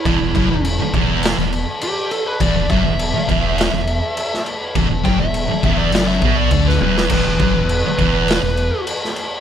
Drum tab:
CC |x-x-x-x-x-x-x-x-|x-x-x-x-x-x-x-x-|x-x-x-x-x-x-x---|x-x-x-x-x-x-x-x-|
SD |--------o-------|--------o----o--|--------o----o-o|--------o----o--|
T1 |----------------|----------------|--------------o-|----------------|
BD |o-o---o---------|o-o---o---------|o-o---o---o-o---|o-o---o---------|